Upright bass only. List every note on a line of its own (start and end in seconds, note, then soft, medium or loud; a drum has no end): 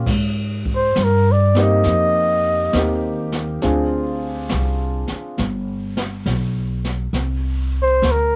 0.07 0.93 G#2 medium
0.96 1.81 G2 medium
1.85 2.71 F2 medium
2.74 3.59 D#2 medium
3.64 4.49 D2 medium
4.52 5.06 C2 medium
5.11 muted upright bass stroke soft
5.39 6.25 G1 medium
6.26 7.12 B1 medium
7.13 8.00 C2 medium
8.02 8.36 D2 medium